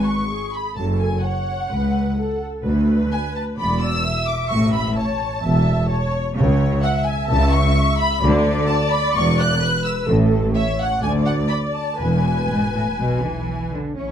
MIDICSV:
0, 0, Header, 1, 6, 480
1, 0, Start_track
1, 0, Tempo, 471698
1, 782, Time_signature, 4, 2, 24, 8
1, 2698, Tempo, 465116
1, 11338, Tempo, 492611
1, 14350, End_track
2, 0, Start_track
2, 0, Title_t, "Violin section"
2, 0, Program_c, 0, 48
2, 53, Note_on_c, 0, 85, 88
2, 538, Note_off_c, 0, 85, 0
2, 545, Note_on_c, 0, 83, 78
2, 772, Note_on_c, 0, 81, 94
2, 783, Note_off_c, 0, 83, 0
2, 853, Note_off_c, 0, 81, 0
2, 1014, Note_on_c, 0, 80, 78
2, 1250, Note_off_c, 0, 80, 0
2, 1256, Note_on_c, 0, 78, 86
2, 2456, Note_off_c, 0, 78, 0
2, 3182, Note_on_c, 0, 80, 91
2, 3265, Note_off_c, 0, 80, 0
2, 3416, Note_on_c, 0, 81, 82
2, 3498, Note_off_c, 0, 81, 0
2, 3668, Note_on_c, 0, 83, 100
2, 3897, Note_on_c, 0, 88, 122
2, 3900, Note_off_c, 0, 83, 0
2, 4367, Note_off_c, 0, 88, 0
2, 4367, Note_on_c, 0, 86, 109
2, 4601, Note_on_c, 0, 85, 105
2, 4611, Note_off_c, 0, 86, 0
2, 4683, Note_off_c, 0, 85, 0
2, 4830, Note_on_c, 0, 83, 112
2, 5077, Note_off_c, 0, 83, 0
2, 5085, Note_on_c, 0, 81, 98
2, 6263, Note_off_c, 0, 81, 0
2, 6998, Note_on_c, 0, 78, 108
2, 7225, Note_off_c, 0, 78, 0
2, 7238, Note_on_c, 0, 80, 102
2, 7478, Note_on_c, 0, 81, 124
2, 7484, Note_off_c, 0, 80, 0
2, 7721, Note_off_c, 0, 81, 0
2, 7725, Note_on_c, 0, 85, 127
2, 8205, Note_on_c, 0, 83, 127
2, 8206, Note_off_c, 0, 85, 0
2, 8439, Note_off_c, 0, 83, 0
2, 8923, Note_on_c, 0, 81, 114
2, 9149, Note_off_c, 0, 81, 0
2, 9163, Note_on_c, 0, 83, 120
2, 9409, Note_off_c, 0, 83, 0
2, 9419, Note_on_c, 0, 85, 127
2, 9502, Note_off_c, 0, 85, 0
2, 9659, Note_on_c, 0, 90, 127
2, 10124, Note_off_c, 0, 90, 0
2, 10139, Note_on_c, 0, 88, 104
2, 10374, Note_off_c, 0, 88, 0
2, 10856, Note_on_c, 0, 76, 114
2, 11079, Note_off_c, 0, 76, 0
2, 11110, Note_on_c, 0, 78, 108
2, 11344, Note_off_c, 0, 78, 0
2, 11348, Note_on_c, 0, 80, 110
2, 11426, Note_off_c, 0, 80, 0
2, 11567, Note_on_c, 0, 78, 106
2, 11645, Note_off_c, 0, 78, 0
2, 11805, Note_on_c, 0, 83, 102
2, 11882, Note_off_c, 0, 83, 0
2, 12046, Note_on_c, 0, 81, 79
2, 12272, Note_on_c, 0, 80, 102
2, 12281, Note_off_c, 0, 81, 0
2, 13940, Note_off_c, 0, 80, 0
2, 14202, Note_on_c, 0, 85, 39
2, 14318, Note_off_c, 0, 85, 0
2, 14350, End_track
3, 0, Start_track
3, 0, Title_t, "Violin section"
3, 0, Program_c, 1, 48
3, 56, Note_on_c, 1, 85, 76
3, 536, Note_on_c, 1, 83, 61
3, 539, Note_off_c, 1, 85, 0
3, 775, Note_on_c, 1, 81, 83
3, 779, Note_off_c, 1, 83, 0
3, 1013, Note_off_c, 1, 81, 0
3, 1013, Note_on_c, 1, 80, 75
3, 1255, Note_off_c, 1, 80, 0
3, 1259, Note_on_c, 1, 78, 80
3, 2458, Note_off_c, 1, 78, 0
3, 3180, Note_on_c, 1, 80, 99
3, 3403, Note_off_c, 1, 80, 0
3, 3431, Note_on_c, 1, 81, 67
3, 3513, Note_off_c, 1, 81, 0
3, 3661, Note_on_c, 1, 83, 99
3, 3897, Note_off_c, 1, 83, 0
3, 3900, Note_on_c, 1, 88, 92
3, 4378, Note_off_c, 1, 88, 0
3, 4382, Note_on_c, 1, 86, 87
3, 4465, Note_off_c, 1, 86, 0
3, 4610, Note_on_c, 1, 85, 121
3, 4847, Note_off_c, 1, 85, 0
3, 4870, Note_on_c, 1, 83, 90
3, 5097, Note_off_c, 1, 83, 0
3, 5104, Note_on_c, 1, 81, 85
3, 6272, Note_off_c, 1, 81, 0
3, 7015, Note_on_c, 1, 78, 123
3, 7098, Note_off_c, 1, 78, 0
3, 7246, Note_on_c, 1, 80, 95
3, 7481, Note_on_c, 1, 81, 127
3, 7483, Note_off_c, 1, 80, 0
3, 7719, Note_on_c, 1, 85, 112
3, 7723, Note_off_c, 1, 81, 0
3, 8203, Note_off_c, 1, 85, 0
3, 8217, Note_on_c, 1, 83, 104
3, 8450, Note_off_c, 1, 83, 0
3, 8921, Note_on_c, 1, 81, 103
3, 9004, Note_off_c, 1, 81, 0
3, 9160, Note_on_c, 1, 83, 105
3, 9397, Note_on_c, 1, 85, 123
3, 9402, Note_off_c, 1, 83, 0
3, 9640, Note_off_c, 1, 85, 0
3, 9649, Note_on_c, 1, 90, 124
3, 10128, Note_off_c, 1, 90, 0
3, 10130, Note_on_c, 1, 88, 82
3, 10213, Note_off_c, 1, 88, 0
3, 10847, Note_on_c, 1, 76, 98
3, 10929, Note_off_c, 1, 76, 0
3, 11098, Note_on_c, 1, 78, 100
3, 11334, Note_off_c, 1, 78, 0
3, 11342, Note_on_c, 1, 80, 103
3, 11420, Note_off_c, 1, 80, 0
3, 11567, Note_on_c, 1, 78, 85
3, 11645, Note_off_c, 1, 78, 0
3, 11791, Note_on_c, 1, 83, 98
3, 11869, Note_off_c, 1, 83, 0
3, 12030, Note_on_c, 1, 81, 75
3, 12268, Note_on_c, 1, 80, 92
3, 12273, Note_off_c, 1, 81, 0
3, 13972, Note_off_c, 1, 80, 0
3, 14223, Note_on_c, 1, 64, 38
3, 14231, Note_on_c, 1, 73, 39
3, 14330, Note_off_c, 1, 64, 0
3, 14334, Note_off_c, 1, 73, 0
3, 14350, End_track
4, 0, Start_track
4, 0, Title_t, "Viola section"
4, 0, Program_c, 2, 48
4, 0, Note_on_c, 2, 71, 70
4, 294, Note_on_c, 2, 68, 68
4, 299, Note_off_c, 2, 71, 0
4, 769, Note_off_c, 2, 68, 0
4, 779, Note_on_c, 2, 69, 72
4, 1248, Note_off_c, 2, 69, 0
4, 1254, Note_on_c, 2, 73, 71
4, 1725, Note_off_c, 2, 73, 0
4, 1730, Note_on_c, 2, 71, 76
4, 2212, Note_on_c, 2, 69, 78
4, 2213, Note_off_c, 2, 71, 0
4, 2686, Note_off_c, 2, 69, 0
4, 2696, Note_on_c, 2, 71, 87
4, 3641, Note_off_c, 2, 71, 0
4, 3665, Note_on_c, 2, 74, 85
4, 4133, Note_off_c, 2, 74, 0
4, 4140, Note_on_c, 2, 76, 89
4, 5076, Note_off_c, 2, 76, 0
4, 5091, Note_on_c, 2, 73, 89
4, 5566, Note_on_c, 2, 76, 92
4, 5570, Note_off_c, 2, 73, 0
4, 6040, Note_off_c, 2, 76, 0
4, 6040, Note_on_c, 2, 73, 106
4, 6513, Note_off_c, 2, 73, 0
4, 6524, Note_on_c, 2, 73, 108
4, 6993, Note_off_c, 2, 73, 0
4, 7006, Note_on_c, 2, 76, 97
4, 8444, Note_on_c, 2, 74, 127
4, 8447, Note_off_c, 2, 76, 0
4, 9860, Note_off_c, 2, 74, 0
4, 9888, Note_on_c, 2, 71, 106
4, 10359, Note_off_c, 2, 71, 0
4, 10360, Note_on_c, 2, 69, 100
4, 10845, Note_on_c, 2, 73, 88
4, 10848, Note_off_c, 2, 69, 0
4, 11323, Note_off_c, 2, 73, 0
4, 11324, Note_on_c, 2, 74, 102
4, 12258, Note_off_c, 2, 74, 0
4, 12277, Note_on_c, 2, 71, 88
4, 13943, Note_off_c, 2, 71, 0
4, 14210, Note_on_c, 2, 61, 65
4, 14350, Note_off_c, 2, 61, 0
4, 14350, End_track
5, 0, Start_track
5, 0, Title_t, "Cello section"
5, 0, Program_c, 3, 48
5, 0, Note_on_c, 3, 44, 67
5, 217, Note_off_c, 3, 44, 0
5, 787, Note_on_c, 3, 42, 78
5, 1182, Note_off_c, 3, 42, 0
5, 1738, Note_on_c, 3, 37, 66
5, 2138, Note_off_c, 3, 37, 0
5, 2708, Note_on_c, 3, 38, 91
5, 3104, Note_off_c, 3, 38, 0
5, 3668, Note_on_c, 3, 40, 80
5, 4064, Note_off_c, 3, 40, 0
5, 4627, Note_on_c, 3, 45, 96
5, 5020, Note_off_c, 3, 45, 0
5, 5571, Note_on_c, 3, 40, 79
5, 5971, Note_off_c, 3, 40, 0
5, 6533, Note_on_c, 3, 49, 100
5, 6927, Note_off_c, 3, 49, 0
5, 7499, Note_on_c, 3, 49, 95
5, 7897, Note_off_c, 3, 49, 0
5, 8454, Note_on_c, 3, 50, 122
5, 8847, Note_off_c, 3, 50, 0
5, 9418, Note_on_c, 3, 40, 97
5, 9814, Note_off_c, 3, 40, 0
5, 10368, Note_on_c, 3, 45, 106
5, 10771, Note_off_c, 3, 45, 0
5, 11339, Note_on_c, 3, 38, 89
5, 11725, Note_off_c, 3, 38, 0
5, 12288, Note_on_c, 3, 40, 87
5, 12696, Note_off_c, 3, 40, 0
5, 12772, Note_on_c, 3, 44, 81
5, 12998, Note_off_c, 3, 44, 0
5, 13017, Note_on_c, 3, 45, 86
5, 13095, Note_off_c, 3, 45, 0
5, 13255, Note_on_c, 3, 47, 91
5, 13491, Note_off_c, 3, 47, 0
5, 13491, Note_on_c, 3, 52, 88
5, 13973, Note_on_c, 3, 50, 72
5, 13977, Note_off_c, 3, 52, 0
5, 14215, Note_on_c, 3, 61, 53
5, 14216, Note_off_c, 3, 50, 0
5, 14350, Note_off_c, 3, 61, 0
5, 14350, End_track
6, 0, Start_track
6, 0, Title_t, "Double bass section"
6, 0, Program_c, 4, 48
6, 0, Note_on_c, 4, 32, 75
6, 215, Note_off_c, 4, 32, 0
6, 776, Note_on_c, 4, 30, 89
6, 1177, Note_off_c, 4, 30, 0
6, 1729, Note_on_c, 4, 37, 77
6, 2133, Note_off_c, 4, 37, 0
6, 2693, Note_on_c, 4, 38, 89
6, 3096, Note_off_c, 4, 38, 0
6, 3661, Note_on_c, 4, 28, 85
6, 4060, Note_off_c, 4, 28, 0
6, 4623, Note_on_c, 4, 33, 97
6, 5018, Note_off_c, 4, 33, 0
6, 5574, Note_on_c, 4, 28, 97
6, 5973, Note_off_c, 4, 28, 0
6, 6527, Note_on_c, 4, 37, 122
6, 6924, Note_off_c, 4, 37, 0
6, 7491, Note_on_c, 4, 37, 118
6, 7893, Note_off_c, 4, 37, 0
6, 8439, Note_on_c, 4, 38, 115
6, 8839, Note_off_c, 4, 38, 0
6, 9404, Note_on_c, 4, 28, 101
6, 9807, Note_off_c, 4, 28, 0
6, 10360, Note_on_c, 4, 33, 119
6, 10767, Note_off_c, 4, 33, 0
6, 11333, Note_on_c, 4, 38, 101
6, 11722, Note_off_c, 4, 38, 0
6, 12286, Note_on_c, 4, 28, 91
6, 12695, Note_off_c, 4, 28, 0
6, 13257, Note_on_c, 4, 35, 77
6, 13657, Note_off_c, 4, 35, 0
6, 14207, Note_on_c, 4, 33, 52
6, 14350, Note_off_c, 4, 33, 0
6, 14350, End_track
0, 0, End_of_file